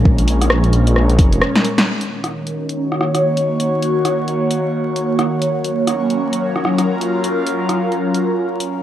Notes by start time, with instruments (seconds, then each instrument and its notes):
Already playing: analog synth pad A#2 G#3 C#4 A#4
0.05 detuned saw bass A#1, kick
0.18 closed hi-hat
0.28 open hi-hat
0.41 cross-stick, closed hi-hat
0.50 cross-stick
0.64 closed hi-hat
0.73 open hi-hat
0.87 closed hi-hat
0.96 cross-stick
1.09 closed hi-hat
1.19 detuned saw bass F1, kick, open hi-hat
1.33 closed hi-hat
1.42 cross-stick
1.56 snare, closed hi-hat
1.65 open hi-hat
1.78 snare, closed hi-hat
1.87 analog synth pad D#3
2.01 closed hi-hat
2.24 cross-stick, closed hi-hat
2.46 analog synth pad F#4 C#5, closed hi-hat
2.53 analog synth pad A#3
2.69 closed hi-hat
2.92 cross-stick
3.01 cross-stick
3.15 cross-stick, closed hi-hat
3.37 closed hi-hat
3.60 closed hi-hat
3.82 closed hi-hat
4.05 cross-stick, closed hi-hat
4.28 closed hi-hat
4.51 closed hi-hat
4.96 closed hi-hat
5.19 cross-stick, closed hi-hat
5.42 closed hi-hat
5.50 analog synth pad F#3
5.60 analog synth pad C#4
5.64 closed hi-hat
5.87 cross-stick, closed hi-hat
6.10 closed hi-hat
6.23 analog synth pad A#4
6.33 closed hi-hat
6.56 cross-stick
6.61 analog synth pad F4, cross-stick
6.78 cross-stick, closed hi-hat
7.01 closed hi-hat
7.24 closed hi-hat
7.47 closed hi-hat
7.69 cross-stick, closed hi-hat
7.92 closed hi-hat
8.14 closed hi-hat
8.60 closed hi-hat